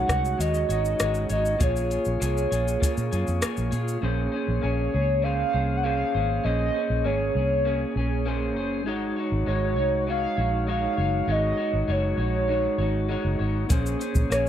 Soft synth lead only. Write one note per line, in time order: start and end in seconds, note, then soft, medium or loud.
0.00 0.41 F#5 loud
0.40 0.70 D#5 loud
0.71 1.27 D#5 medium
1.32 1.59 D#5 medium
1.63 3.39 C#5 medium
4.64 5.25 C#5 loud
5.23 5.76 F5 loud
5.77 5.85 F#5 medium
5.83 6.43 F5 loud
6.44 7.07 D#5 loud
7.05 8.26 C#5 medium
9.48 10.04 C#5 loud
10.09 10.65 F5 loud
10.70 11.33 F5 loud
11.31 11.90 D#5 loud
11.91 13.07 C#5 medium
14.31 14.49 C#5 loud